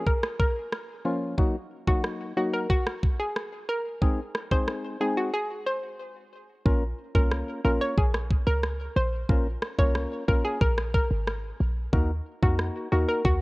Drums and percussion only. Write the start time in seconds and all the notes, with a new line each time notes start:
0.06 kick
0.23 cross-stick
0.39 kick
0.72 cross-stick
1.38 kick
1.88 kick
2.04 cross-stick
2.70 kick
2.87 cross-stick
3.03 kick
3.36 cross-stick
4.02 kick
4.35 cross-stick
4.51 kick
4.68 cross-stick
6.66 kick
7.15 kick
7.31 cross-stick
7.97 kick
8.14 cross-stick
8.31 kick
8.64 cross-stick
9.29 kick
9.62 cross-stick
9.79 kick
9.95 cross-stick
10.28 kick
10.61 kick
10.78 cross-stick
10.94 kick
11.27 cross-stick
11.93 kick
12.43 kick
12.59 cross-stick
13.25 kick